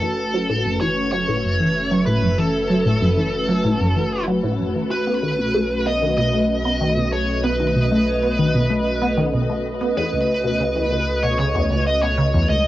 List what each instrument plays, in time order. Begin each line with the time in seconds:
Already playing: sub bass F#1, analog synth pad A3 C#4 F#4 B4, lead electric guitar A4
0.02 synth arpeggio sound E3
0.34 synth arpeggio sound F#3
0.50 synth arpeggio sound A2
0.65 synth arpeggio sound F#2
0.73 analog synth pad E5
0.81 synth arpeggio sound E3, lead electric guitar C#5
1.12 synth arpeggio sound F#3, lead electric guitar C#5
1.28 synth arpeggio sound A2
1.44 synth arpeggio sound F#2
1.60 synth arpeggio sound E3
1.91 synth arpeggio sound F#3
2.06 synth arpeggio sound A2, lead electric guitar B4
2.23 synth arpeggio sound F#2
2.38 synth arpeggio sound E3, lead electric guitar A4
2.70 synth arpeggio sound F#3
2.86 synth arpeggio sound A2
3.02 synth arpeggio sound F#2
3.17 synth arpeggio sound E3
3.49 synth arpeggio sound F#3
3.64 synth arpeggio sound A2
3.81 synth arpeggio sound F#2
3.96 synth arpeggio sound E3
4.28 synth arpeggio sound F#3
4.44 synth arpeggio sound A2
4.59 synth arpeggio sound F#2
4.76 synth arpeggio sound E3
4.91 sub bass B1, lead electric guitar B4
5.07 synth arpeggio sound B3
5.23 synth arpeggio sound D#3
5.39 synth arpeggio sound B2
5.54 synth arpeggio sound A3
5.74 analog synth pad D#5
5.86 synth arpeggio sound B3, lead electric guitar D#5
6.02 synth arpeggio sound D#3
6.17 synth arpeggio sound B2, lead electric guitar D#5
6.33 synth arpeggio sound A3
6.65 synth arpeggio sound B3
6.81 synth arpeggio sound D#3
6.96 synth arpeggio sound B2
7.12 synth arpeggio sound A3, lead electric guitar C#5
7.44 synth arpeggio sound B3, lead electric guitar B4
7.60 synth arpeggio sound D#3
7.75 synth arpeggio sound B2
7.92 synth arpeggio sound A3
8.23 synth arpeggio sound B3
8.39 synth arpeggio sound D#3
8.55 synth arpeggio sound B2
8.70 synth arpeggio sound A3
9.02 synth arpeggio sound B3
9.17 synth arpeggio sound D#3
9.34 synth arpeggio sound B2
9.49 synth arpeggio sound A3
9.81 synth arpeggio sound B3
9.97 sub bass C#2, synth arpeggio sound E2, lead electric guitar B4
10.13 synth arpeggio sound C#2
10.44 synth arpeggio sound B2
10.60 synth arpeggio sound C#3
10.76 synth arpeggio sound E2
10.92 synth arpeggio sound C#2
11.23 synth arpeggio sound B2, lead electric guitar C#5
11.39 synth arpeggio sound C#3, lead electric guitar C#5
11.54 synth arpeggio sound E2
11.70 synth arpeggio sound C#2
11.87 lead electric guitar D#5
12.02 synth arpeggio sound B2, lead electric guitar C#5
12.18 synth arpeggio sound C#3
12.34 synth arpeggio sound E2
12.49 synth arpeggio sound C#2, lead electric guitar D#5